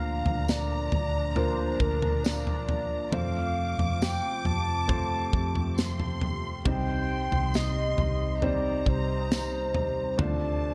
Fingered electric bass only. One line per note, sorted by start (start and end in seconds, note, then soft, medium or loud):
0.00 0.22 D2 loud
0.26 0.88 D2 medium
0.92 1.76 D2 medium
1.80 3.09 D2 medium
3.12 3.75 F2 loud
3.79 4.20 F2 medium
4.45 5.29 F2 medium
5.33 6.62 F2 medium
6.65 7.28 C2 medium
7.32 7.94 C2 medium
7.98 8.82 C2 medium
8.86 10.15 C2 medium
10.19 10.74 D2 loud